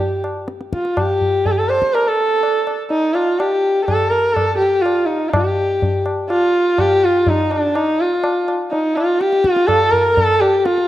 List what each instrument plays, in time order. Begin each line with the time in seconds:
Already playing: sarangi G4
0.24 tabla na
0.48 tabla te
0.61 tabla te
0.73 sarangi F4, tabla ke
0.85 tabla te
0.97 sarangi G4, tabla na, tabla ge
1.21 tabla ge
1.45 sarangi A4, tabla tin, tabla ge
1.51 sarangi G4
1.58 sarangi A4
1.69 sarangi C5, tabla na
1.82 tabla ke
1.94 sarangi A#4, tabla na
2.07 sarangi A4
2.43 tabla na
2.67 tabla na
2.90 sarangi D#4, tabla tin
3.14 sarangi F4, tabla na
3.39 sarangi G4, tabla na
3.85 sarangi A4, tabla na, tabla ge
4.10 sarangi A#4
4.33 sarangi A4, tabla na, tabla ge
4.58 sarangi G4
4.62 tabla te
4.82 sarangi F4, tabla na
5.06 sarangi D#4
5.30 sarangi G4, tabla na, tabla ge
5.82 tabla tin, tabla ge
6.06 tabla na
6.30 sarangi F4, tabla na
6.78 sarangi G4, tabla na, tabla ge
7.05 sarangi F4
7.27 sarangi D#4, tabla tin, tabla ge
7.51 sarangi D4, tabla na
7.75 sarangi D#4, tabla na
8.01 sarangi F4
8.24 tabla na
8.48 tabla na
8.71 sarangi D#4, tabla tin
8.96 sarangi F4, tabla na
9.21 sarangi G4, tabla te
9.33 tabla te
9.44 tabla ke
9.53 sarangi F4, tabla te
9.67 sarangi A4, tabla na, tabla ge
9.91 sarangi A#4, tabla ge
10.15 sarangi A4, tabla tin, tabla ge
10.40 sarangi G4, tabla na
10.59 sarangi G4
10.65 sarangi F4, tabla te
10.78 tabla te